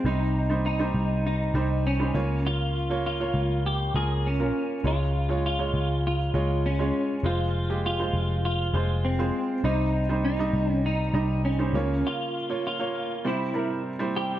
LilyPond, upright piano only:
<<
  \new Staff \with { instrumentName = "Upright piano" } { \time 4/4 \key c \phrygian \tempo 4 = 100 <g ees' c''>8 r16 <g ees' c''>8 <g ees' c''>4 r16 <g ees' c''>8 r16 <g ees' c''>16 <bes f' des''>8~ | <bes f' des''>8 r16 <bes f' des''>8 <bes f' des''>4 r16 <bes f' bes'>8 r16 <bes f' bes'>8 r16 | <aes f' des''>8 r16 <aes f' des''>8 <aes f' des''>4 r16 <aes f' des''>8 r16 <aes f' des''>8 r16 | <aes f' c''>8 r16 <aes f' g'>8 <aes f' c''>4 r16 <aes f' c''>8 r16 <aes f' c''>8 r16 |
<g ees' c''>8 r16 <g ees' c''>8 <g ees' ees''>4 r16 <g ees' ees''>8 r16 <g ees' c''>16 <bes f' des''>8~ | <bes f' des''>8 r16 <bes f' des''>8 <bes f' des''>8. <g e' c''>8 <g e' bes'>8 r16 <g e' c''>8 r16 | }
  \new Staff \with { instrumentName = "Upright piano" } { \clef bass \time 4/4 \key c \phrygian c4. r2 des8~ | des4 r2. | des4. r2 r8 | r1 |
c4. r2 des8~ | des4 r4 c4. r8 | }
>>